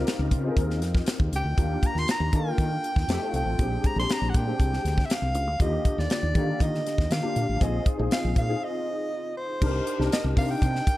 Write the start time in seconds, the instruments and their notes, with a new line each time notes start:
Already playing: grand piano C4 D#4 F4 G4 A#4
0.07 snare, closed hi-hat
0.19 fretless electric bass C#2
0.31 fretless electric bass C#3, kick, closed hi-hat
0.43 grand piano C4 D#4 F4 G#4
0.50 grand piano A#4
0.57 fretless electric bass D#2, kick, closed hi-hat
0.70 snare
0.82 fretless electric bass F2, snare, closed hi-hat
0.95 kick, snare
1.06 snare, closed hi-hat
1.20 fretless electric bass D#2, kick
1.32 fretless electric bass C#2, closed hi-hat
1.36 soprano saxophone G5
1.44 fretless electric bass D2
1.57 fretless electric bass D#2, grand piano A#3 D4 F4 G4, kick, closed hi-hat
1.83 soprano saxophone A#5, kick, closed hi-hat
1.95 fretless electric bass D#2, snare
1.99 soprano saxophone C6
2.08 soprano saxophone A#5, snare, closed hi-hat
2.20 fretless electric bass D#2
2.33 fretless electric bass D#3, grand piano A#3 D4 F4 A4, soprano saxophone G5, kick, closed hi-hat
2.39 grand piano A#4
2.58 fretless electric bass D#3, kick, closed hi-hat
2.84 closed hi-hat
2.96 fretless electric bass D#2, kick, snare
3.08 fretless electric bass F2, grand piano A3 C4 D#4 G4, snare, closed hi-hat
3.20 grand piano A3 C4 D#4 F4
3.33 fretless electric bass C2, soprano saxophone G5, closed hi-hat
3.46 fretless electric bass A1
3.59 fretless electric bass A#1, grand piano G#3 C4 D4 G4, kick, closed hi-hat
3.84 soprano saxophone A#5, kick, closed hi-hat
3.96 fretless electric bass A#1, grand piano G#3 C4 D4 G4, soprano saxophone C6, snare
4.10 soprano saxophone A#5, snare, closed hi-hat
4.21 fretless electric bass A#1
4.30 soprano saxophone F#5
4.34 fretless electric bass A#2, soprano saxophone G5, kick, closed hi-hat
4.47 grand piano G#3 C4 D4 G4
4.60 fretless electric bass C2, kick, closed hi-hat
4.73 snare
4.85 fretless electric bass D2, snare, closed hi-hat
4.98 kick, snare
5.05 soprano saxophone E5
5.10 soprano saxophone F5, snare, closed hi-hat
5.22 fretless electric bass C2
5.35 fretless electric bass C#2, closed hi-hat
5.47 fretless electric bass D2
5.59 fretless electric bass D#2, grand piano D3 A#3 F4 G4, soprano saxophone D#5, kick, closed hi-hat
5.85 kick, closed hi-hat
5.98 fretless electric bass D#2, soprano saxophone D5, snare
6.10 soprano saxophone D5, snare, closed hi-hat
6.23 fretless electric bass D#2
6.35 grand piano D3 A#3 F4 G4, fretless electric bass D#3, kick, closed hi-hat
6.60 fretless electric bass D#3, soprano saxophone D#5, kick, closed hi-hat
6.75 snare
6.86 snare, closed hi-hat
6.98 fretless electric bass D#2, kick, snare
7.10 fretless electric bass D#3, soprano saxophone F5, snare, closed hi-hat
7.22 grand piano A#3 D4 F4 G4
7.36 fretless electric bass A#2, closed hi-hat
7.49 fretless electric bass A1
7.60 fretless electric bass A#1, grand piano C4 D#4 F4 G#4, soprano saxophone D#5, kick, closed hi-hat
7.86 kick, closed hi-hat
7.97 fretless electric bass A#1, grand piano C4 D#4 F4 G#4
8.11 soprano saxophone F5, snare, closed hi-hat
8.24 fretless electric bass A#1
8.36 fretless electric bass A#2, soprano saxophone F5, kick, closed hi-hat
8.48 grand piano C4 D#4 F4 G#4
8.64 soprano saxophone D#5
9.37 soprano saxophone C5
9.61 fretless electric bass C2, grand piano D4 D#4 G4 A#4, kick, crash
9.87 closed hi-hat
9.98 fretless electric bass C2, grand piano D4 D#4 G4 A#4, snare
10.12 soprano saxophone D#5, snare, closed hi-hat
10.24 fretless electric bass C2
10.36 fretless electric bass C3, grand piano D4 D#4 G4 A#4, soprano saxophone F5, kick, open hi-hat
10.51 soprano saxophone G5
10.62 fretless electric bass C3, kick, closed hi-hat
10.75 snare
10.87 kick, closed hi-hat